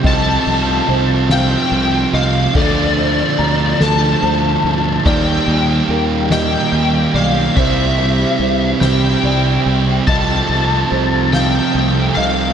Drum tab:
CC |------|x-----|------|x-----|
RD |xxxxxx|-xxxxx|xxxxxx|-xxxxx|
SD |---o--|---o--|---o--|---o--|
BD |o-----|o-----|o-----|o-----|

CC |------|
RD |xxxxxx|
SD |---o--|
BD |o-----|